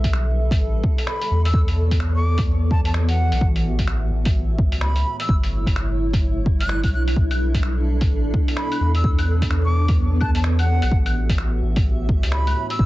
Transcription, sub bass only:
0, 0, Header, 1, 2, 480
1, 0, Start_track
1, 0, Tempo, 468750
1, 1577, Time_signature, 4, 2, 24, 8
1, 13166, End_track
2, 0, Start_track
2, 0, Title_t, "Sub bass"
2, 0, Program_c, 0, 38
2, 0, Note_on_c, 0, 35, 97
2, 603, Note_off_c, 0, 35, 0
2, 611, Note_on_c, 0, 33, 75
2, 839, Note_off_c, 0, 33, 0
2, 1339, Note_on_c, 0, 40, 98
2, 3387, Note_off_c, 0, 40, 0
2, 3398, Note_on_c, 0, 35, 100
2, 3486, Note_off_c, 0, 35, 0
2, 3494, Note_on_c, 0, 33, 101
2, 4201, Note_off_c, 0, 33, 0
2, 4208, Note_on_c, 0, 33, 77
2, 4821, Note_off_c, 0, 33, 0
2, 4831, Note_on_c, 0, 37, 75
2, 5158, Note_off_c, 0, 37, 0
2, 5415, Note_on_c, 0, 31, 94
2, 5785, Note_off_c, 0, 31, 0
2, 5801, Note_on_c, 0, 31, 94
2, 6984, Note_off_c, 0, 31, 0
2, 7005, Note_on_c, 0, 35, 96
2, 7325, Note_off_c, 0, 35, 0
2, 7336, Note_on_c, 0, 35, 95
2, 8284, Note_off_c, 0, 35, 0
2, 8298, Note_on_c, 0, 33, 79
2, 8523, Note_off_c, 0, 33, 0
2, 9016, Note_on_c, 0, 40, 98
2, 11065, Note_off_c, 0, 40, 0
2, 11086, Note_on_c, 0, 35, 107
2, 11170, Note_off_c, 0, 35, 0
2, 11176, Note_on_c, 0, 33, 99
2, 11885, Note_off_c, 0, 33, 0
2, 11901, Note_on_c, 0, 33, 79
2, 12508, Note_off_c, 0, 33, 0
2, 12526, Note_on_c, 0, 37, 77
2, 12845, Note_off_c, 0, 37, 0
2, 13100, Note_on_c, 0, 31, 99
2, 13166, Note_off_c, 0, 31, 0
2, 13166, End_track
0, 0, End_of_file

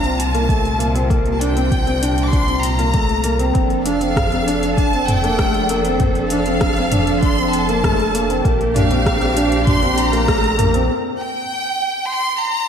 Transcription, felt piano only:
0, 0, Header, 1, 2, 480
1, 0, Start_track
1, 0, Tempo, 612245
1, 861, Time_signature, 4, 2, 24, 8
1, 9944, End_track
2, 0, Start_track
2, 0, Title_t, "Felt piano"
2, 0, Program_c, 0, 0
2, 23, Note_on_c, 0, 60, 68
2, 202, Note_off_c, 0, 60, 0
2, 266, Note_on_c, 0, 58, 73
2, 354, Note_off_c, 0, 58, 0
2, 383, Note_on_c, 0, 57, 83
2, 562, Note_off_c, 0, 57, 0
2, 616, Note_on_c, 0, 58, 74
2, 708, Note_off_c, 0, 58, 0
2, 743, Note_on_c, 0, 60, 70
2, 832, Note_off_c, 0, 60, 0
2, 860, Note_on_c, 0, 58, 88
2, 1040, Note_off_c, 0, 58, 0
2, 1102, Note_on_c, 0, 62, 78
2, 1192, Note_off_c, 0, 62, 0
2, 1225, Note_on_c, 0, 60, 71
2, 1403, Note_off_c, 0, 60, 0
2, 1464, Note_on_c, 0, 60, 74
2, 1553, Note_off_c, 0, 60, 0
2, 1580, Note_on_c, 0, 62, 77
2, 1760, Note_off_c, 0, 62, 0
2, 1821, Note_on_c, 0, 62, 80
2, 1911, Note_off_c, 0, 62, 0
2, 1939, Note_on_c, 0, 60, 70
2, 2119, Note_off_c, 0, 60, 0
2, 2185, Note_on_c, 0, 58, 71
2, 2274, Note_off_c, 0, 58, 0
2, 2304, Note_on_c, 0, 57, 81
2, 2483, Note_off_c, 0, 57, 0
2, 2537, Note_on_c, 0, 58, 74
2, 2628, Note_off_c, 0, 58, 0
2, 2657, Note_on_c, 0, 60, 68
2, 2748, Note_off_c, 0, 60, 0
2, 2773, Note_on_c, 0, 60, 89
2, 2956, Note_off_c, 0, 60, 0
2, 3020, Note_on_c, 0, 62, 78
2, 3110, Note_off_c, 0, 62, 0
2, 3138, Note_on_c, 0, 60, 68
2, 3319, Note_off_c, 0, 60, 0
2, 3383, Note_on_c, 0, 60, 68
2, 3472, Note_off_c, 0, 60, 0
2, 3503, Note_on_c, 0, 62, 77
2, 3682, Note_off_c, 0, 62, 0
2, 3745, Note_on_c, 0, 62, 84
2, 3833, Note_off_c, 0, 62, 0
2, 3868, Note_on_c, 0, 60, 70
2, 4045, Note_off_c, 0, 60, 0
2, 4105, Note_on_c, 0, 58, 74
2, 4193, Note_off_c, 0, 58, 0
2, 4226, Note_on_c, 0, 57, 79
2, 4404, Note_off_c, 0, 57, 0
2, 4467, Note_on_c, 0, 58, 76
2, 4555, Note_off_c, 0, 58, 0
2, 4589, Note_on_c, 0, 60, 71
2, 4676, Note_off_c, 0, 60, 0
2, 4711, Note_on_c, 0, 60, 94
2, 4887, Note_off_c, 0, 60, 0
2, 4951, Note_on_c, 0, 62, 77
2, 5037, Note_off_c, 0, 62, 0
2, 5067, Note_on_c, 0, 60, 70
2, 5244, Note_off_c, 0, 60, 0
2, 5310, Note_on_c, 0, 60, 74
2, 5396, Note_off_c, 0, 60, 0
2, 5427, Note_on_c, 0, 62, 80
2, 5605, Note_off_c, 0, 62, 0
2, 5671, Note_on_c, 0, 62, 82
2, 5757, Note_off_c, 0, 62, 0
2, 5789, Note_on_c, 0, 60, 74
2, 5966, Note_off_c, 0, 60, 0
2, 6028, Note_on_c, 0, 58, 76
2, 6115, Note_off_c, 0, 58, 0
2, 6148, Note_on_c, 0, 57, 86
2, 6325, Note_off_c, 0, 57, 0
2, 6386, Note_on_c, 0, 58, 77
2, 6474, Note_off_c, 0, 58, 0
2, 6506, Note_on_c, 0, 60, 71
2, 6594, Note_off_c, 0, 60, 0
2, 6619, Note_on_c, 0, 58, 95
2, 6800, Note_off_c, 0, 58, 0
2, 6860, Note_on_c, 0, 62, 85
2, 6950, Note_off_c, 0, 62, 0
2, 6982, Note_on_c, 0, 60, 74
2, 7161, Note_off_c, 0, 60, 0
2, 7220, Note_on_c, 0, 60, 76
2, 7310, Note_off_c, 0, 60, 0
2, 7340, Note_on_c, 0, 62, 85
2, 7520, Note_off_c, 0, 62, 0
2, 7584, Note_on_c, 0, 62, 81
2, 7673, Note_off_c, 0, 62, 0
2, 7700, Note_on_c, 0, 60, 79
2, 7880, Note_off_c, 0, 60, 0
2, 7933, Note_on_c, 0, 58, 80
2, 8026, Note_off_c, 0, 58, 0
2, 8056, Note_on_c, 0, 57, 89
2, 8238, Note_off_c, 0, 57, 0
2, 8296, Note_on_c, 0, 58, 87
2, 8388, Note_off_c, 0, 58, 0
2, 8420, Note_on_c, 0, 60, 78
2, 8510, Note_off_c, 0, 60, 0
2, 9944, End_track
0, 0, End_of_file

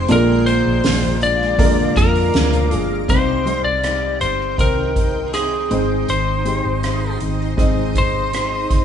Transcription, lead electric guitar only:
0, 0, Header, 1, 2, 480
1, 0, Start_track
1, 0, Tempo, 750000
1, 56, Time_signature, 4, 2, 24, 8
1, 5662, End_track
2, 0, Start_track
2, 0, Title_t, "Lead electric guitar"
2, 0, Program_c, 0, 29
2, 0, Note_on_c, 0, 72, 91
2, 74, Note_off_c, 0, 72, 0
2, 78, Note_on_c, 0, 70, 90
2, 296, Note_on_c, 0, 72, 87
2, 314, Note_off_c, 0, 70, 0
2, 784, Note_off_c, 0, 72, 0
2, 787, Note_on_c, 0, 74, 84
2, 1262, Note_on_c, 0, 70, 91
2, 1716, Note_off_c, 0, 74, 0
2, 1774, Note_off_c, 0, 70, 0
2, 1774, Note_on_c, 0, 68, 91
2, 1983, Note_on_c, 0, 72, 74
2, 2000, Note_off_c, 0, 68, 0
2, 2330, Note_off_c, 0, 72, 0
2, 2333, Note_on_c, 0, 74, 77
2, 2692, Note_off_c, 0, 74, 0
2, 2695, Note_on_c, 0, 72, 73
2, 2918, Note_off_c, 0, 72, 0
2, 2948, Note_on_c, 0, 70, 74
2, 3414, Note_off_c, 0, 70, 0
2, 3416, Note_on_c, 0, 68, 66
2, 3903, Note_on_c, 0, 72, 67
2, 3910, Note_off_c, 0, 68, 0
2, 4594, Note_off_c, 0, 72, 0
2, 5108, Note_on_c, 0, 72, 78
2, 5662, Note_off_c, 0, 72, 0
2, 5662, End_track
0, 0, End_of_file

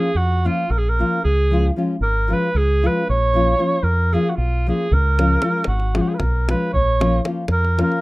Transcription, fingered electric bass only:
0, 0, Header, 1, 2, 480
1, 0, Start_track
1, 0, Tempo, 524934
1, 1127, Time_signature, 7, 3, 24, 8
1, 7327, End_track
2, 0, Start_track
2, 0, Title_t, "Fingered electric bass"
2, 0, Program_c, 0, 33
2, 137, Note_on_c, 0, 41, 70
2, 434, Note_off_c, 0, 41, 0
2, 642, Note_on_c, 0, 34, 91
2, 937, Note_off_c, 0, 34, 0
2, 1142, Note_on_c, 0, 37, 82
2, 1550, Note_off_c, 0, 37, 0
2, 1835, Note_on_c, 0, 32, 78
2, 2127, Note_off_c, 0, 32, 0
2, 2328, Note_on_c, 0, 37, 79
2, 2622, Note_off_c, 0, 37, 0
2, 2830, Note_on_c, 0, 34, 93
2, 3235, Note_off_c, 0, 34, 0
2, 3502, Note_on_c, 0, 41, 75
2, 3798, Note_off_c, 0, 41, 0
2, 4005, Note_on_c, 0, 35, 83
2, 4299, Note_off_c, 0, 35, 0
2, 4494, Note_on_c, 0, 37, 95
2, 4903, Note_off_c, 0, 37, 0
2, 5189, Note_on_c, 0, 32, 78
2, 5483, Note_off_c, 0, 32, 0
2, 5684, Note_on_c, 0, 35, 74
2, 5978, Note_off_c, 0, 35, 0
2, 6166, Note_on_c, 0, 34, 84
2, 6576, Note_off_c, 0, 34, 0
2, 6843, Note_on_c, 0, 41, 69
2, 7144, Note_off_c, 0, 41, 0
2, 7327, End_track
0, 0, End_of_file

